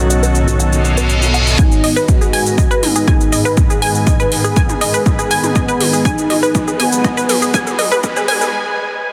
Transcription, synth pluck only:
0.10 0.18 D#5 medium
0.23 0.27 B4 loud
0.48 0.59 F#4 medium
0.60 0.68 F#5 medium
0.84 0.93 D#5 medium
0.97 1.02 B4 loud
1.22 1.33 F#4 medium
1.34 1.42 F#5 medium
1.59 1.67 G#5 medium
1.84 1.92 D#5 medium
1.96 2.01 B4 loud
2.21 2.33 G#4 medium
2.33 2.42 G#5 loud
2.58 2.66 D#5 medium
2.71 2.75 B4 loud
2.96 3.07 G#4 medium
3.08 3.16 G#5 loud
3.32 3.41 D#5 medium
3.45 3.50 B4 medium
3.70 3.81 G#4 medium
3.82 3.90 G#5 loud
4.07 4.15 D#5 medium
4.20 4.24 B4 loud
4.44 4.56 G#4 medium
4.56 4.65 G#5 loud
4.81 4.89 D#5 medium
4.94 4.99 B4 medium
5.19 5.30 G#4 medium
5.31 5.39 G#5 loud
5.56 5.64 D#5 medium
5.68 5.73 B4 loud
5.93 6.05 G#4 medium
6.05 6.13 G#5 loud
6.30 6.38 D#5 medium
6.43 6.47 B4 loud
6.68 6.79 G#4 medium
6.80 6.88 G#5 loud
7.04 7.13 D#5 medium
7.17 7.22 B4 loud
7.42 7.53 G#4 medium
7.54 7.62 G#5 loud
7.79 7.87 D#5 medium
7.92 7.96 B4 loud
8.16 8.28 G#4 medium
8.28 8.37 G#5 loud

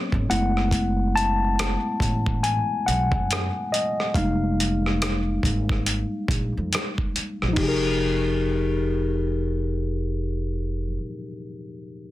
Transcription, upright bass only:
0.14 0.27 G#1 medium
0.31 1.74 F#1 medium
2.01 2.59 A1 medium
2.88 3.14 B1 medium
3.13 3.48 F#2 medium
4.15 5.39 F1 medium
5.44 6.02 G#1 medium
6.29 6.51 A#1 medium
6.57 6.70 F2 medium
7.17 muted upright bass stroke soft
7.42 7.56 A#1 medium
7.58 10.97 F1 medium

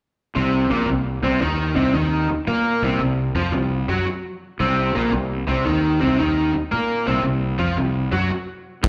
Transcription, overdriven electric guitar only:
0.35 0.70 C3 medium
0.35 0.70 C4 medium
0.70 0.88 A#2 medium
0.70 0.88 A#3 medium
0.89 1.17 C3 medium
1.23 1.41 C3 medium
1.23 1.41 C4 medium
1.41 1.75 D#3 medium
1.41 1.76 D#4 loud
1.76 1.94 C3 medium
1.76 1.94 C4 medium
1.94 2.28 D#3 medium
1.94 2.29 D#4 medium
2.30 muted overdriven electric guitar stroke medium
2.48 2.82 A#3 medium
2.48 2.82 A#4 loud
2.83 3.00 C3 medium
2.83 3.01 C4 medium
3.01 3.29 C3 medium
3.35 3.53 F3 medium
3.35 3.53 F4 medium
3.53 3.81 C3 medium
3.89 4.06 F#3 medium
3.89 4.06 F#4 medium
4.07 muted overdriven electric guitar stroke medium
4.60 4.94 C3 medium
4.60 4.94 C4 loud
4.95 5.12 A#2 medium
4.95 5.12 A#3 medium
5.13 5.41 C3 medium
5.47 5.65 C3 medium
5.47 5.65 C4 loud
5.65 5.99 D#3 medium
5.65 6.00 D#4 medium
6.00 6.18 C3 medium
6.00 6.18 C4 loud
6.19 6.53 D#3 medium
6.19 6.53 D#4 loud
6.54 muted overdriven electric guitar stroke soft
6.72 7.05 A#3 medium
6.72 7.06 A#4 medium
7.06 7.22 C3 medium
7.06 7.24 C4 medium
7.24 7.52 C3 medium
7.59 7.77 F3 medium
7.59 7.77 F4 medium
7.78 8.06 C3 medium
8.12 8.30 F#3 medium
8.12 8.30 F#4 loud
8.30 muted overdriven electric guitar stroke soft
8.83 8.88 C3 medium
8.83 8.88 C4 medium

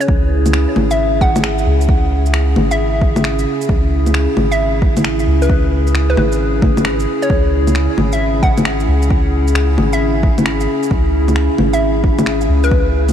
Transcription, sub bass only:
0.08 0.66 C#2 loud
0.76 1.65 G#1 medium
1.66 2.55 C#2 medium
2.56 3.45 G#1 medium
3.69 4.27 C#2 loud
4.37 5.26 G#1 medium
5.27 6.16 C#2 medium
6.17 7.06 G#1 medium
7.30 7.88 C#2 medium
7.97 8.87 G#1 medium
8.88 9.77 C#2 medium
9.78 10.67 G#1 medium
10.91 11.49 C#2 loud
11.58 12.48 G#1 medium
12.49 13.13 C#2 medium

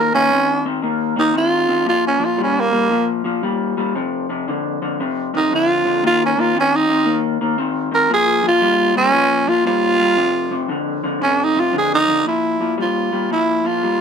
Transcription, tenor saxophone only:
0.00 0.14 A#4 medium
0.15 0.65 C#4 loud
1.20 1.36 D#4 loud
1.38 1.87 F4 loud
1.89 2.05 F4 loud
2.07 2.26 C#4 medium
2.25 2.40 F4 medium
2.44 2.62 C#4 medium
2.60 3.09 A#3 loud
5.37 5.52 D#4 medium
5.55 6.03 F4 medium
6.07 6.21 F4 loud
6.26 6.42 C#4 medium
6.40 6.56 F4 medium
6.60 6.77 C#4 loud
6.76 7.24 D#4 loud
7.95 8.11 A#4 medium
8.14 8.45 G#4 loud
8.48 8.97 F4 loud
8.97 9.50 C#4 loud
9.49 9.66 F4 medium
9.67 10.67 F4 loud
11.23 11.45 C#4 medium
11.44 11.61 D#4 medium
11.60 11.75 F4 loud
11.78 11.93 G#4 medium
11.95 12.27 D#4 loud
12.28 12.76 E4 medium
12.82 13.28 F4 medium
13.33 13.68 E4 medium
13.67 14.01 F4 medium

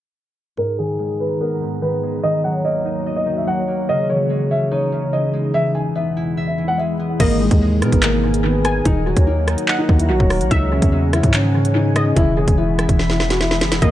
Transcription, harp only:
0.57 1.60 G#2 medium
0.79 1.80 D#3 medium
0.99 1.87 G#3 medium
1.40 2.71 B3 loud
1.61 2.28 G#2 medium
1.82 2.22 D#3 medium
2.03 2.28 G#3 medium
2.24 3.25 D#3 medium
2.45 3.32 F#3 medium
2.65 3.68 A#3 medium
2.85 4.15 D#4 medium
3.06 4.15 D#5 loud
3.26 3.94 D#3 medium
3.47 3.94 F#3 medium
3.68 6.01 A#3 medium
3.89 4.91 C#3 medium
4.09 4.97 E3 medium
4.30 5.32 G#3 medium
4.51 7.41 C#4 medium
4.71 5.60 D#4 loud
4.92 5.59 C#3 medium
5.13 5.53 E3 medium
5.33 5.59 G#3 medium
5.54 6.57 E3 medium
5.74 6.78 G#3 medium
5.95 6.99 B3 medium
6.17 7.47 E4 medium
6.37 7.47 E5 loud
6.58 7.25 E3 medium
6.79 7.25 G#3 medium
6.99 7.88 B3 medium
7.19 8.08 G#2 loud
7.41 8.08 D#3 medium
7.62 8.49 G#3 medium
7.82 9.95 A#4 medium
8.03 8.28 B2 loud
8.23 8.91 G#2 medium
8.44 8.84 D#3 medium
8.65 8.91 G#3 medium
8.86 9.87 D#3 medium
9.07 9.94 F#3 medium
9.27 10.30 A#3 medium
9.47 10.78 D#4 medium
9.68 10.78 D#5 loud
9.89 10.56 D#3 medium
10.09 10.56 F#3 medium
10.30 12.64 A#3 medium
10.51 11.39 C#3 medium
10.72 11.39 E3 medium
10.92 11.39 G#3 medium
11.13 13.91 C#4 medium
11.34 11.59 D#3 loud
11.54 12.22 C#3 medium
11.75 12.15 E3 medium
11.96 12.22 G#3 medium
12.16 13.19 E3 loud
12.37 13.40 G#3 medium
12.58 13.61 B3 medium
12.79 13.91 E4 medium
13.00 13.91 E5 loud
13.20 13.87 E3 medium
13.41 13.87 G#3 medium
13.62 13.91 B3 medium
13.81 13.91 G#2 loud

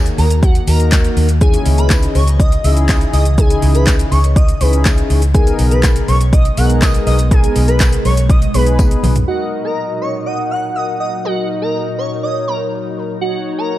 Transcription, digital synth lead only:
0.18 0.26 A#4 medium
0.43 0.59 F#4 medium
0.68 0.76 A#4 medium
1.41 1.57 G#4 loud
1.78 1.94 B4 medium
2.15 2.23 C#5 medium
2.40 2.56 D#5 medium
2.64 2.72 E5 medium
2.89 2.97 D#5 medium
3.13 3.21 D#5 medium
3.38 3.54 G#4 loud
3.75 3.91 B4 medium
4.11 4.19 C#5 medium
4.36 4.52 D#5 medium
4.61 4.69 B4 medium
5.34 5.51 G#4 loud
5.71 5.87 B4 medium
6.08 6.16 C#5 medium
6.33 6.49 D#5 medium
6.58 6.66 F#5 medium
6.82 6.90 D#5 medium
7.07 7.15 D#5 medium
7.31 7.47 G#4 loud
7.68 7.84 B4 medium
8.05 8.13 C#5 medium
8.29 8.46 D#5 medium
8.54 8.62 B4 medium
9.28 9.44 F#4 loud
9.65 9.81 A#4 medium
10.01 10.10 C#5 medium
10.26 10.42 D#5 medium
10.51 10.59 F#5 medium
10.75 10.84 D#5 medium
11.00 11.08 D#5 medium
11.25 11.41 F#4 medium
11.62 11.78 A#4 medium
11.98 12.07 C#5 medium
12.23 12.39 D#5 medium
12.48 12.56 A#4 medium
13.21 13.37 F#4 loud
13.58 13.74 A#4 medium

